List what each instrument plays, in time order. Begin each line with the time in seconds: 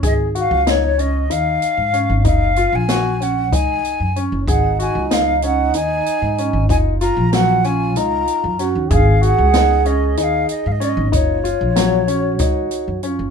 0.03 upright bass G#1, grand piano G#4, flute D#5, kick, closed hi-hat
0.35 grand piano F#4, closed hi-hat
0.39 flute F5
0.51 upright bass C#2
0.67 grand piano D#4, flute C#5, snare, closed hi-hat
0.98 grand piano C#4, flute D#5, closed hi-hat
1.30 upright bass D#2, grand piano D#4, flute F5, closed hi-hat
1.62 closed hi-hat
1.77 upright bass G#2
1.93 grand piano C#4, closed hi-hat
2.10 upright bass G#1
2.25 upright bass F#1, grand piano D#4, flute F5, kick, closed hi-hat
2.56 grand piano F4, closed hi-hat
2.72 upright bass A#1, flute G#5
2.89 grand piano F#4, snare, closed hi-hat
3.20 grand piano C#4, flute F#5, closed hi-hat
3.52 upright bass C#2, grand piano D#4, flute G#5, kick, closed hi-hat
3.85 closed hi-hat
4.00 upright bass F#2
4.16 grand piano C#4, closed hi-hat
4.32 upright bass F#1
4.47 upright bass G#1, trombone D#4, grand piano G#4, flute F#5, kick, closed hi-hat
4.79 grand piano F#4, flute G#5, closed hi-hat
4.95 upright bass C#2
5.11 grand piano D#4, flute F5, snare, closed hi-hat
5.42 grand piano C#4, flute F#5, closed hi-hat
5.74 upright bass D#2, grand piano D#4, flute G#5, closed hi-hat
6.06 closed hi-hat
6.22 upright bass G#2
6.38 grand piano C#4, closed hi-hat
6.53 upright bass G#1
6.69 upright bass F#1, grand piano D#4, trombone F4, flute G#5, kick, closed hi-hat
7.01 grand piano F4, flute A#5, snare, closed hi-hat
7.17 upright bass A#1
7.33 grand piano F#3, flute F#5, snare, closed hi-hat
7.64 grand piano C#4, flute G#5, closed hi-hat
7.96 upright bass C#2, grand piano D#4, flute A#5, closed hi-hat
8.27 closed hi-hat
8.44 upright bass F#2
8.59 grand piano C#4, trombone F#4, snare, closed hi-hat
8.75 upright bass D#2
8.90 upright bass G#1, grand piano G#4, trombone G#4, flute F5, kick, closed hi-hat
9.21 grand piano F#4, flute F#5, closed hi-hat
9.38 upright bass C#2
9.54 grand piano D#4, snare, closed hi-hat
9.85 grand piano C#4, flute D#5, closed hi-hat
10.17 upright bass D#2, grand piano D#4, flute G#5, closed hi-hat
10.23 flute F5
10.49 flute D#5, closed hi-hat
10.66 upright bass G#2, flute F5
10.72 flute D#5
10.80 grand piano C#4, flute D5, snare, closed hi-hat
10.89 flute D#5
10.97 upright bass G#1
11.12 upright bass F#1, grand piano D#4, trombone F4, flute C#5, kick, closed hi-hat
11.44 grand piano F4, closed hi-hat
11.61 upright bass A#1
11.76 grand piano F#3, snare, closed hi-hat
12.08 grand piano C#4, trombone F#4, closed hi-hat
12.39 upright bass C#2, grand piano D#4, kick, snare, closed hi-hat
12.71 closed hi-hat
12.88 upright bass F#2
13.03 grand piano C#4, trombone F4, closed hi-hat
13.19 upright bass F#1